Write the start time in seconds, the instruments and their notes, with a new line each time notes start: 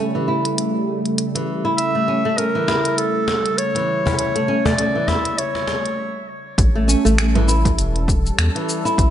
Already playing: analog synth pad C#3 G3 A3, nylon-string guitar C#4
0.15 nylon-string guitar E3
0.28 nylon-string guitar E4
0.45 closed hi-hat
0.58 closed hi-hat
1.05 closed hi-hat
1.18 closed hi-hat
1.35 nylon-string guitar E3, closed hi-hat
1.65 nylon-string guitar E4
1.77 clarinet E5, closed hi-hat
1.95 nylon-string guitar A3
2.08 nylon-string guitar C#4
2.25 nylon-string guitar A3
2.38 nylon-string guitar C#4, clarinet A#4, closed hi-hat
2.55 nylon-string guitar E3
2.68 nylon-string guitar E4, cajon slap
2.85 closed hi-hat
2.98 clarinet A4, closed hi-hat
3.28 cajon slap
3.46 closed hi-hat
3.58 clarinet C#5, closed hi-hat
3.75 nylon-string guitar E3, cajon slap, closed hi-hat
4.05 nylon-string guitar E4, cajon bass
4.18 clarinet C#5, closed hi-hat
4.35 nylon-string guitar A3, closed hi-hat
4.48 nylon-string guitar C#4
4.65 nylon-string guitar A3, clarinet D5, cajon bass
4.78 nylon-string guitar C#4, closed hi-hat
4.95 nylon-string guitar E3
5.08 nylon-string guitar E4, clarinet E5, cajon bass, cajon slap
5.25 closed hi-hat
5.38 clarinet C#5, closed hi-hat
5.55 cajon slap
5.67 cajon slap
5.86 closed hi-hat
6.58 analog synth bass A1, analog synth pad G3 C#4 A4, kick, closed hi-hat, shaker
6.75 nylon-string guitar A3
6.88 nylon-string guitar C#4, shaker
7.05 analog synth bass A1, nylon-string guitar A3, shaker
7.18 nylon-string guitar C#4, finger snap, closed hi-hat, shaker
7.35 nylon-string guitar E3, closed hi-hat, low conga
7.48 nylon-string guitar E4, shaker
7.65 kick, closed hi-hat, low conga, shaker
7.79 analog synth bass E1, closed hi-hat, shaker
7.96 closed hi-hat
8.08 kick, shaker
8.26 shaker
8.39 analog synth bass E2, finger snap, closed hi-hat, shaker
8.55 nylon-string guitar E3, closed hi-hat
8.69 shaker
8.85 nylon-string guitar E4, shaker
8.98 analog synth bass A1, kick, closed hi-hat, shaker